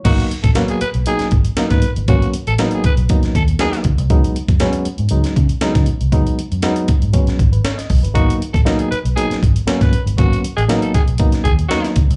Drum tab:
CC |x---------------|----------------|----------------|----------------|
HH |xxxxxxxxxxxxxxxx|xxxxxxxxxxxxxxxx|xxxxxxxxxxxxxxxx|xxxxxxxxxxxxxxox|
SD |----o----o--oo--|----o----o--oo--|----o----o--oo--|----o----o--oo--|
BD |o--o------o--o--|o-----o-o-o---o-|o--o------o--o--|o-----o-o-o---o-|

CC |----------------|----------------|
HH |xxxxxxxxxxxxxxxx|xxxxxxxxxxxxxxxx|
SD |----o----o--oo--|----o----o--oo--|
BD |o--o------o--o--|o-----o-o-o---o-|